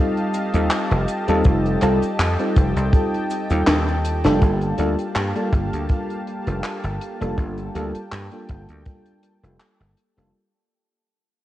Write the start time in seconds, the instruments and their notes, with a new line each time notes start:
Already playing: fm electric piano G3 C4 D#4 F4, analog synth pad G4 D#5 F5 A5
0.00 fm electric piano A4
0.17 closed hi-hat
0.34 closed hi-hat, cabasa
0.54 slap bass D#2, fm electric piano G3 C4 D#4 F4 A4, closed hi-hat, cabasa
0.71 clap, closed hi-hat, cabasa
0.91 slap bass F1, closed hi-hat
1.08 closed hi-hat, cabasa
1.28 slap bass D#2, fm electric piano G3 C4 D#4 F4 A4, closed hi-hat, cabasa
1.44 slap bass F1, analog synth pad G5, kick, closed hi-hat, cabasa
1.66 closed hi-hat
1.81 slap bass C2, fm electric piano G3 C4 D#4 F4 A4, clap, closed hi-hat, cabasa
2.02 muted slap bass stroke, closed hi-hat, cabasa
2.19 slap bass F2, clap, closed hi-hat, cabasa
2.39 fm electric piano G3 C4 D#4 F4 A4, closed hi-hat
2.56 slap bass F1, kick, closed hi-hat, cabasa
2.76 slap bass C2, closed hi-hat, cabasa
2.93 fm electric piano G3 C4 D#4 F4 A4, kick, closed hi-hat, cabasa
3.14 closed hi-hat
3.30 closed hi-hat, cabasa
3.50 slap bass D#2, fm electric piano G3 C4 D#4 F4 A4, closed hi-hat, cabasa
3.67 slap bass D#2, snare, clap, closed hi-hat, cabasa
3.88 closed hi-hat
4.05 closed hi-hat, cabasa
4.24 slap bass F1, fm electric piano G3 A#3 D4 F4 A4, snare, closed hi-hat, cabasa
4.42 slap bass G1, analog synth pad A#3 G4 F5 A5, kick, closed hi-hat
4.61 closed hi-hat
4.78 slap bass D2, fm electric piano G3 A#3 D4 F4 A4, closed hi-hat
4.99 closed hi-hat
5.15 slap bass G2, clap, closed hi-hat
5.35 fm electric piano G3 A#3 D4 F4 A4, closed hi-hat
5.53 slap bass G1, kick, closed hi-hat
5.73 slap bass D2, closed hi-hat
5.89 fm electric piano G3 A#3 D4 F4 A4, kick, closed hi-hat
6.10 closed hi-hat
6.27 closed hi-hat
6.46 slap bass F1, fm electric piano G3 A#3 D4 F4 A4, closed hi-hat
6.64 clap, closed hi-hat
6.84 slap bass G1, closed hi-hat
7.01 closed hi-hat
7.20 slap bass F1, fm electric piano G3 A#3 D4 F4 A4, closed hi-hat
7.38 slap bass G1, analog synth pad G5, kick, closed hi-hat
7.58 closed hi-hat
7.74 slap bass D2, fm electric piano G3 A#3 D4 F4 A4, closed hi-hat
7.95 closed hi-hat
8.12 slap bass G2, clap, closed hi-hat
8.31 fm electric piano G3 A#3 D4 F4 A4, closed hi-hat
8.49 slap bass G1, kick, closed hi-hat
8.69 slap bass D2, closed hi-hat
8.85 fm electric piano G3 A#3 D4 F4 A4, kick, closed hi-hat
9.06 closed hi-hat
9.23 closed hi-hat
9.43 slap bass F1, fm electric piano G3 A#3 D4 F4 A4, closed hi-hat
9.60 clap, closed hi-hat
9.80 slap bass G1, closed hi-hat
9.97 closed hi-hat
10.17 slap bass F1, fm electric piano G3 A#3 D4 F4 A4, closed hi-hat